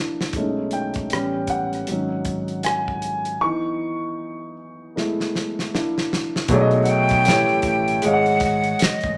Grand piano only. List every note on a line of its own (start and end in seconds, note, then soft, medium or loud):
0.00 0.31 A#3 soft
0.00 0.31 D4 soft
0.00 0.31 E4 soft
0.36 1.08 G#3 soft
0.36 1.08 A3 soft
0.36 1.08 C#4 soft
0.36 1.08 D#4 medium
0.73 1.52 G5 medium
1.12 1.84 G3 soft
1.12 1.85 B3 soft
1.12 1.85 C#4 soft
1.50 2.61 F#5 medium
1.89 2.42 F#3 soft
1.89 2.42 C#4 soft
1.89 2.43 D#4 soft
2.65 3.44 G#5 medium
3.41 4.53 E3 soft
3.41 4.53 B3 soft
3.41 4.53 D#4 medium
3.41 4.53 C#6 medium
4.96 5.68 G#3 soft
4.96 5.69 A3 soft
4.96 5.69 B3 soft
4.96 5.69 E4 soft
5.74 6.46 A#3 soft
5.74 6.46 D4 soft
5.74 6.46 E4 medium
6.49 7.26 B2 medium
6.49 7.26 F#3 medium
6.49 7.24 A3 medium
6.49 7.27 G#4 medium
6.53 7.28 C#5 medium
6.53 6.59 D5 medium
6.61 7.32 D#5 medium
7.25 7.90 A3 medium
7.25 7.91 E4 medium
7.25 7.91 G4 medium
7.25 7.92 B4 medium
7.30 7.93 C#5 medium
8.02 8.98 G#3 medium
8.02 8.98 G#4 medium
8.02 8.99 C#5 medium
8.06 9.00 D#5 medium
8.06 8.13 F5 medium
8.14 9.03 F#5 medium